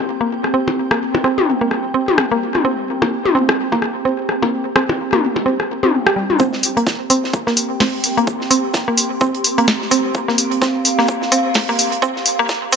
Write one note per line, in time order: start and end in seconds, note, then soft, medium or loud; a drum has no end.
0.00 6.38 C4 medium
0.00 6.41 C4 medium
0.00 6.40 G4 medium
0.00 6.40 G5 medium
0.00 6.40 C6 medium
0.21 0.26 A#3 loud
0.44 cross-stick soft
0.54 0.57 C4 loud
0.68 percussion blips medium
0.91 0.97 A#3 loud
0.91 cross-stick medium
1.15 percussion blips medium
1.24 1.27 C4 loud
1.24 cross-stick soft
1.38 mid tom medium
1.61 1.67 A#3 loud
1.71 cross-stick soft
1.94 1.98 C4 loud
2.08 mid tom medium
2.18 cross-stick medium
2.31 2.37 A#3 loud
2.55 cross-stick soft
2.55 mid tom medium
2.65 2.68 C4 loud
3.02 3.08 A#3 loud
3.02 cross-stick soft
3.02 percussion blips medium
3.26 mid tom medium
3.35 3.38 C4 loud
3.49 cross-stick medium
3.49 percussion blips soft
3.72 3.78 A#3 loud
3.72 percussion blips soft
3.82 cross-stick soft
4.05 4.09 C4 loud
4.29 cross-stick soft
4.42 4.48 A#3 loud
4.42 percussion blips soft
4.76 4.79 C4 loud
4.76 cross-stick medium
4.89 percussion blips medium
5.13 5.19 A#3 loud
5.13 cross-stick soft
5.13 mid tom medium
5.36 percussion blips soft
5.46 5.49 C4 loud
5.60 cross-stick soft
5.83 5.85 C4 medium
5.83 mid tom medium
6.07 6.10 G4 loud
6.07 cross-stick medium
6.16 6.24 G3 medium
6.30 mid tom medium
6.39 12.76 C4 medium
6.39 6.43 C4 loud
6.39 12.76 G4 medium
6.39 kick loud
6.39 shaker medium
6.53 snare medium
6.63 open hi-hat medium
6.63 shaker medium
6.77 6.83 A#3 loud
6.77 closed hi-hat soft
6.82 10.30 G5 medium
6.82 12.76 C6 medium
6.87 kick loud
6.87 snare loud
6.87 shaker medium
7.10 7.13 C4 loud
7.10 open hi-hat medium
7.10 shaker medium
7.24 snare medium
7.33 kick loud
7.33 shaker medium
7.47 7.53 A#3 loud
7.47 snare medium
7.56 open hi-hat medium
7.56 shaker medium
7.80 7.84 C4 loud
7.80 kick loud
7.80 snare loud
7.80 open hi-hat medium
8.03 open hi-hat medium
8.03 shaker medium
8.17 8.23 A#3 loud
8.17 closed hi-hat soft
8.27 kick loud
8.27 shaker medium
8.41 snare soft
8.51 8.54 C4 loud
8.51 open hi-hat medium
8.51 shaker medium
8.74 kick loud
8.74 snare loud
8.74 shaker medium
8.88 8.94 A#3 loud
8.97 open hi-hat loud
8.97 shaker medium
9.21 9.24 C4 loud
9.21 kick loud
9.21 shaker medium
9.35 closed hi-hat soft
9.44 open hi-hat medium
9.44 shaker medium
9.58 9.64 A#3 loud
9.58 closed hi-hat soft
9.68 kick loud
9.68 snare loud
9.68 shaker medium
9.82 snare soft
9.91 9.95 C4 loud
9.91 open hi-hat medium
9.91 shaker medium
10.14 12.76 F5 medium
10.14 kick loud
10.14 shaker loud
10.28 10.34 A#3 loud
10.28 snare soft
10.38 open hi-hat loud
10.38 shaker medium
10.52 closed hi-hat soft
10.62 10.65 C4 medium
10.62 kick loud
10.62 snare loud
10.62 shaker medium
10.85 open hi-hat loud
10.85 shaker medium
10.98 11.04 A#3 loud
10.98 snare medium
11.08 kick loud
11.08 shaker medium
11.22 snare medium
11.32 11.35 C4 loud
11.32 open hi-hat medium
11.32 shaker medium
11.54 kick loud
11.54 snare loud
11.54 open hi-hat medium
11.69 11.75 A#3 loud
11.79 open hi-hat loud
11.79 shaker medium
11.92 closed hi-hat soft
12.02 12.05 C4 loud
12.02 kick loud
12.02 shaker medium
12.16 snare soft
12.25 open hi-hat loud
12.25 shaker medium
12.39 12.45 A#3 loud
12.49 kick loud
12.49 snare loud
12.49 shaker medium
12.72 12.76 C4 loud
12.72 open hi-hat loud
12.72 shaker medium